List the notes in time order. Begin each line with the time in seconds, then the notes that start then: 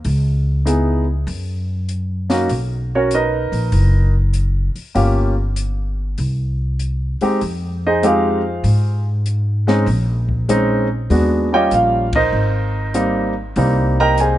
0.05 C#2, open hi-hat
0.65 B3 D#4 E4 G#4, closed hi-hat
1.27 F#2, open hi-hat
1.89 closed hi-hat
2.30 A#3 C#4 D#4 F#4, snare, open hi-hat
2.49 B1, open hi-hat
2.95 C#4 F#4 A#4 C#5
3.11 D#4 A#4 B4 D#5, closed hi-hat
3.52 A#1, open hi-hat
3.72 F#1, open hi-hat
4.33 closed hi-hat
4.75 muted upright bass stroke, open hi-hat
4.95 G1 A#3 C#4 F4 G4, open hi-hat
5.56 closed hi-hat
6.18 C2, open hi-hat
6.79 closed hi-hat
7.21 G#3 C4 D#4 G4, muted upright bass stroke, open hi-hat
7.41 F2, open hi-hat
7.87 D#4 G#4 C5 D#5
8.03 G#3 C4 D#4 F4 G4 G#4 C5 F5, closed hi-hat
8.64 G#2, open hi-hat
9.26 closed hi-hat
9.67 G#3 C4 C#4 D#4, snare
9.86 A#1, open hi-hat
10.29 kick
10.49 G#3 C4 C#4 D#4, closed hi-hat
11.10 D#2 G#3 B3 D4 F#4, open hi-hat
11.52 G3 A#3 C#4 F4 G4 C#5 D#5 G5
11.71 A#1 F4 F5, closed hi-hat
12.13 D#4 A#4 C5 D#5, kick, ride
12.33 G#1
12.94 G3 A#3 C4 D#4, closed hi-hat
13.56 C2 G3 A#3 C4 D#4, open hi-hat
14.00 A#4 D#5 G5 A#5
14.18 G#4 C5 D#5 G#5, closed hi-hat